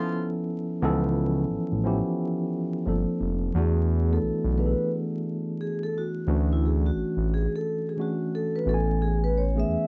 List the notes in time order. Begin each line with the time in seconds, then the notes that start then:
Already playing: F3 B3 C#4 E4 F4 A4
0.82 C#2 E3 B3 C#4 E4 A4
0.88 F3
1.51 A1
1.72 A1
1.84 F3 B3 C#4 E4 G4
2.86 G1 F3 A#3 C4 D4 A4
3.21 F1
3.54 E2 E3 A3 B3 D4 F#4
3.58 G#4
4.09 E3 A3 B3 D4 E4 A4
4.23 B1
4.44 B1
4.57 E3 A3 B3 D4 G#4 B4
4.66 A4
5.61 G#4
5.83 A4
5.98 F#4
6.27 D2 E3 A3 C#4 D4 F#4
6.53 E4
6.66 G#4
6.86 F#4
6.95 A1
7.17 A1
7.34 G#4
7.56 A4
7.89 G#4
7.97 E3 A3 C#4 D4 F#4
8.01 F#4
8.35 A4
8.56 B4
8.64 A1 E3 A3 B3 C#4 F#4
8.69 A4
8.74 G#5
9.02 G#4
9.24 B4
9.38 C#5
9.55 E3 A3 B3 C#4 G#4
9.60 E5
9.69 E2